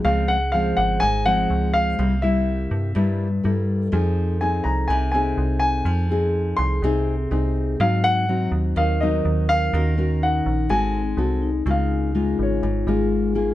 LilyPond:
<<
  \new Staff \with { instrumentName = "Grand piano" } { \time 4/4 \key des \major \tempo 4 = 124 f''8 ges''8 f''8 ges''8 aes''8 ges''4 f''8~ | f''8 e''2. r8 | r4 aes''8 bes''8 aes''8 aes''4 aes''8~ | aes''4. c'''2 r8 |
f''8 ges''4 r8 f''8 ees''4 f''8~ | f''4 ges''4 aes''4. r8 | f''4. des''4 r4. | }
  \new Staff \with { instrumentName = "Vibraphone" } { \time 4/4 \key des \major aes'8 r8 c''2 r4 | r2. a'4~ | a'8 r2. r8 | r8 aes'2 r4. |
r2 bes'2 | r4 ees'4. c'4 ees'8~ | ees'8 r8 f'4. aes'4. | }
  \new Staff \with { instrumentName = "Nylon-string guitar" } { \time 4/4 \key des \major << { <f aes c'>8 r8 <f aes c'>4 r8 <f aes c'>4. | <g bes e'>8 <g bes e'>4. <g bes e'>8 r8 <g bes e'>4 | <c' ees' aes'>4 <c' ees' aes'>4. <c' ees' aes'>4.~ | <c' ees' aes'>8 <c' ees' aes'>4. <c' ees' aes'>8 r8 <c' ees' aes'>4 |
<ges c' ees'>4 <ges c' ees'>4. <ges c' ees'>4. | <des' ges' bes'>8 <des' ges' bes'>4. <c' ges' a'>8 r8 <c' ges' a'>8 r8 | <aes bes f'>4 <aes bes f'>4 r8 <aes bes f'>4 <bes f' aes'>8 | } \\ { des2 aes,2 | c2 g,2 | f2 c2 | f2 c2 |
aes,2 ees2 | ees2 aes2 | des2 aes,2 | } >> }
  \new Staff \with { instrumentName = "FM bass" } { \clef bass \time 4/4 \key des \major des,4. aes,,8 aes,,4 des,4 | c,4. g,8 g,4 g,4 | f,4. c,8 c,4 c,4 | f,4. c,8 c,4 c,4 |
aes,4. ees,8 ees,4 ees,4 | ees,4. bes,,8 aes,,4 c,4 | des,4. aes,,8 aes,,8 aes,,4. | }
>>